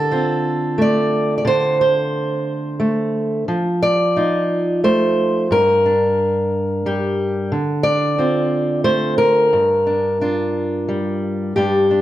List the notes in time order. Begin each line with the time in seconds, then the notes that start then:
Already playing: D3 A4
0.11 C4 F4
0.78 A3 D5
1.38 D5
1.45 D3 C5
1.81 C5
2.80 A3
3.48 F3
3.83 D5
4.16 D#4 F4
4.84 A3 C5
5.51 G2 A#4
5.86 D4
6.86 G3 G4
7.52 D3
7.83 D5
8.18 C4 F4
8.84 A3 C5
9.18 A#4
9.53 G2
9.87 D4
10.21 D4 F4
10.88 G3
11.56 G2 G3 D4 G4
11.90 D4